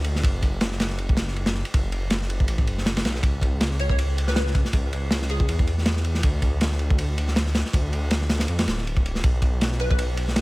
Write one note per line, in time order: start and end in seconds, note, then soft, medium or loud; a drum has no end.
0.00 0.22 D2 medium
0.04 ride medium
0.15 snare soft
0.23 1.63 F#1 loud
0.23 kick loud
0.23 ride medium
0.42 kick medium
0.42 ride medium
0.61 snare loud
0.61 ride medium
0.71 snare soft
0.80 snare loud
0.80 ride medium
0.90 snare soft
0.98 ride medium
1.09 kick medium
1.17 snare loud
1.17 ride medium
1.27 snare soft
1.36 ride medium
1.46 snare loud
1.46 ride medium
1.54 snare soft
1.65 ride medium
1.74 2.47 F#1 loud
1.74 kick loud
1.74 ride medium
1.92 ride medium
2.10 snare loud
2.10 ride medium
2.21 snare soft
2.30 ride medium
2.40 kick loud
2.48 2.69 A1 medium
2.48 ride medium
2.58 kick loud
2.67 3.03 F#1 medium
2.67 ride medium
2.78 snare soft
2.86 snare loud
2.86 ride medium
2.97 snare loud
2.97 ride medium
3.04 3.22 B1 medium
3.04 snare loud
3.04 ride medium
3.15 snare soft
3.23 4.63 C#2 loud
3.23 kick loud
3.23 ride medium
3.42 kick medium
3.42 ride medium
3.61 snare loud
3.61 ride medium
3.71 snare soft
3.79 3.86 C#5 medium
3.79 ride medium
3.89 3.96 C#5 medium
3.89 kick medium
3.98 ride medium
4.18 ride medium
4.27 4.33 B4 medium
4.27 snare soft
4.36 4.43 B4 medium
4.36 snare loud
4.36 ride medium
4.47 snare medium
4.55 kick loud
4.55 ride medium
4.65 snare medium
4.73 5.47 C#2 loud
4.73 kick loud
4.73 ride medium
4.93 ride medium
5.11 snare loud
5.11 ride medium
5.22 snare medium
5.29 5.68 G#4 medium
5.29 ride medium
5.40 kick medium
5.49 6.22 E2 medium
5.49 ride medium
5.59 kick loud
5.67 ride medium
5.78 snare soft
5.86 snare loud
5.86 ride medium
5.96 snare medium
6.04 ride medium
6.15 snare soft
6.23 7.63 D2 loud
6.23 kick loud
6.23 ride loud
6.42 kick medium
6.42 ride medium
6.61 snare loud
6.61 ride medium
6.71 snare soft
6.79 ride medium
6.90 kick loud
6.98 ride medium
7.18 ride medium
7.28 snare soft
7.36 snare loud
7.36 ride medium
7.46 snare medium
7.55 snare loud
7.55 ride medium
7.65 snare soft
7.73 8.47 D2 loud
7.73 kick loud
7.73 ride loud
7.93 ride medium
8.11 snare loud
8.11 ride medium
8.21 snare medium
8.29 snare loud
8.29 ride medium
8.39 snare loud
8.39 ride medium
8.48 8.67 F2 medium
8.48 ride medium
8.59 snare loud
8.59 ride medium
8.67 9.22 D1 loud
8.67 snare loud
8.67 ride medium
8.78 snare soft
8.87 ride medium
8.97 kick medium
9.06 ride medium
9.15 snare medium
9.24 10.41 B1 loud
9.24 kick loud
9.24 ride medium
9.42 kick loud
9.42 ride medium
9.61 snare loud
9.61 ride medium
9.72 snare soft
9.79 9.87 B4 medium
9.79 ride medium
9.90 9.96 B4 medium
9.90 kick loud
9.99 ride loud
10.17 ride medium
10.28 snare soft
10.36 snare loud
10.36 ride loud